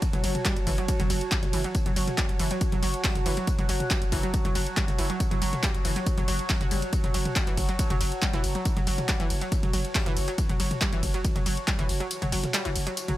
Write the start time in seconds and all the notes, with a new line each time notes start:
Already playing: F#4 C#5 A5
0.02 F#3 F#4, kick, closed hi-hat, ride, tambourine
0.13 F#1 F#3, closed hi-hat, mid tom
0.24 F#1 F#3, open hi-hat, ride, tambourine
0.35 closed hi-hat, mid tom
0.45 G3, kick, snare, clap, closed hi-hat, ride, tambourine
0.56 F#1, closed hi-hat
0.67 F#1 E3, kick, open hi-hat, ride, tambourine
0.78 F#3, closed hi-hat
0.88 kick, closed hi-hat, ride, tambourine
1.00 F#1 F#3, closed hi-hat, mid tom
1.10 F#1 F#3, open hi-hat, ride, tambourine
1.21 closed hi-hat
1.32 G3, kick, snare, clap, closed hi-hat, ride, tambourine
1.43 F#1, snare, closed hi-hat, mid tom
1.53 F#1 E3, open hi-hat, ride, tambourine
1.64 F#3, closed hi-hat
1.75 kick, closed hi-hat, ride, tambourine
1.86 F#1 F#3, closed hi-hat, mid tom
1.96 F#1 F#3, open hi-hat, ride, tambourine
2.08 snare, closed hi-hat, mid tom
2.18 G3, kick, snare, clap, closed hi-hat, ride, tambourine
2.29 F#1, closed hi-hat
2.39 F#1 E3, open hi-hat, ride, tambourine
2.51 F#3, closed hi-hat
2.61 kick, closed hi-hat, ride, tambourine
2.72 F#1 F#3, closed hi-hat, mid tom
2.83 F#1 F#3, open hi-hat, ride, tambourine
2.94 closed hi-hat
3.04 G3, kick, snare, clap, closed hi-hat, open hi-hat, ride
3.15 F#1, snare, closed hi-hat, mid tom
3.26 F#1 E3, open hi-hat, ride, tambourine
3.37 F#3, closed hi-hat
3.47 kick, closed hi-hat, ride, tambourine
3.59 F#1 F#3, closed hi-hat, mid tom
3.69 F#1 F#3, open hi-hat, ride, tambourine
3.80 closed hi-hat, mid tom
3.91 G3, kick, snare, clap, closed hi-hat, ride, tambourine
4.02 F#1, closed hi-hat
4.12 F#1 E3, kick, open hi-hat, ride, tambourine
4.23 F#3, closed hi-hat
4.34 kick, closed hi-hat, ride, tambourine
4.45 F#1 F#3, closed hi-hat, mid tom
4.55 F#1 F#3, open hi-hat, ride, tambourine
4.67 closed hi-hat
4.77 G3, kick, snare, clap, closed hi-hat, ride, tambourine
4.88 F#1, snare, closed hi-hat, mid tom
4.98 F#1 E3, open hi-hat, ride, tambourine
5.10 F#3, closed hi-hat
5.20 kick, closed hi-hat, ride, tambourine
5.31 F#1 F#3, closed hi-hat, mid tom
5.42 F#1 F#3, open hi-hat, ride, tambourine
5.53 snare, closed hi-hat, mid tom
5.63 G3, kick, snare, clap, closed hi-hat, ride, tambourine
5.75 F#1, closed hi-hat
5.85 F#1 E3, open hi-hat, ride, tambourine
5.96 F#3, closed hi-hat
6.06 kick, closed hi-hat, ride, tambourine
6.18 F#1 F#3, closed hi-hat, mid tom
6.28 F#1 F#3, open hi-hat, ride, tambourine
6.39 closed hi-hat
6.50 F#3, kick, snare, clap, closed hi-hat, open hi-hat, ride
6.61 F#1 F#4, snare, closed hi-hat, mid tom
6.71 F#1 G3, open hi-hat, ride, tambourine
6.82 closed hi-hat
6.93 kick, closed hi-hat, ride, tambourine
7.04 F#1 F#3, closed hi-hat, mid tom
7.14 F#1 F#3, open hi-hat, ride, tambourine
7.25 closed hi-hat, mid tom
7.36 G3, kick, snare, clap, closed hi-hat, ride, tambourine
7.47 F#1 E3, closed hi-hat
7.57 F#1, kick, open hi-hat, ride, tambourine
7.69 F#3, closed hi-hat
7.79 kick, closed hi-hat, ride, tambourine
7.90 F#1 F#3, closed hi-hat, mid tom
8.01 F#1 F#3, open hi-hat, ride, tambourine
8.12 closed hi-hat
8.22 G3, kick, snare, clap, closed hi-hat, ride, tambourine
8.33 F#1 E3, snare, closed hi-hat, mid tom
8.44 F#1, open hi-hat, ride, tambourine
8.55 F#3, closed hi-hat
8.65 kick, closed hi-hat, ride, tambourine
8.77 F#1 F#3, closed hi-hat, mid tom
8.87 F#1 F#3, open hi-hat, ride, tambourine
8.98 snare, closed hi-hat, mid tom
9.09 G3, kick, snare, clap, closed hi-hat, ride, tambourine
9.20 F#1 E3, closed hi-hat
9.30 F#1, open hi-hat, ride, tambourine
9.41 F#3, closed hi-hat
9.52 kick, closed hi-hat, ride, tambourine
9.63 F#1 F#3, closed hi-hat, mid tom
9.73 F#1 F#3, open hi-hat, ride, tambourine
9.85 closed hi-hat
9.95 G3, kick, snare, clap, closed hi-hat, open hi-hat, ride
10.06 F#1 E3, snare, closed hi-hat, mid tom
10.17 F#1, open hi-hat, ride, tambourine
10.28 F#3, closed hi-hat
10.38 kick, closed hi-hat, ride, tambourine
10.49 F#1 F#3, closed hi-hat, mid tom
10.60 F#1 F#3, open hi-hat, ride, tambourine
10.71 closed hi-hat, mid tom
10.81 G3, kick, snare, clap, closed hi-hat, ride, tambourine
10.93 F#1 E3, closed hi-hat
11.03 F#1, kick, open hi-hat, ride, tambourine
11.14 F#3, closed hi-hat
11.24 kick, closed hi-hat, ride, tambourine
11.36 F#1 F#3, closed hi-hat, mid tom
11.46 F#1 F#3, open hi-hat, ride, tambourine
11.57 closed hi-hat
11.68 G3, kick, snare, clap, closed hi-hat, ride, tambourine
11.79 F#1 E3, snare, closed hi-hat, mid tom
11.89 F#1, open hi-hat, ride, tambourine
12.00 F#3, closed hi-hat
12.11 closed hi-hat, ride, tambourine
12.22 F#1 F#3, closed hi-hat, mid tom
12.32 F#1 F#3, open hi-hat, ride, tambourine
12.44 snare, closed hi-hat, mid tom
12.54 G3, snare, clap, closed hi-hat, ride, tambourine
12.65 F#1 E3, closed hi-hat
12.75 F#1, open hi-hat, ride, tambourine
12.87 F#3, closed hi-hat
12.97 closed hi-hat, ride, tambourine
13.08 F#1 F#3, closed hi-hat, mid tom